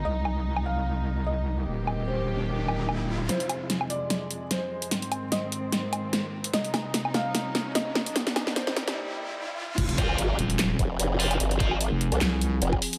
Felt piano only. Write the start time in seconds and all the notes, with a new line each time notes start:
0.05 D#5
0.66 F5
1.26 D#5
2.08 C5
3.29 C5
3.90 D5
4.51 C5
5.32 D#5
6.54 D#5
7.14 F5
7.75 D#5
8.56 C5